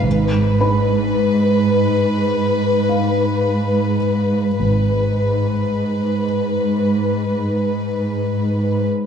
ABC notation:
X:1
M:4/4
L:1/8
Q:1/4=53
K:Ablyd
V:1 name="Felt piano"
z [_c_c']4 f3- | f3 z4 z |]
V:2 name="Violin section"
_c8 | _c8 |]
V:3 name="Cello section" clef=bass
A,,8 | A,,8 |]
V:4 name="Double bass section" clef=bass
A,,,2 z6 | A,,,2 z6 |]